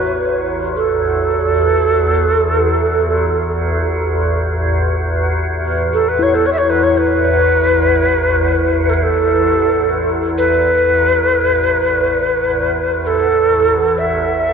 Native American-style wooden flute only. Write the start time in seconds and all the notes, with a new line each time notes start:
Already playing: B4
0.76 A4
5.94 A4
6.09 B4
6.23 C#5
6.35 A4
6.46 C#5
6.53 E5
6.58 C#5
6.70 B4
6.83 C#5
6.98 B4
8.89 A4
8.94 B4
9.03 A4
10.38 B4
13.07 A4
13.98 E5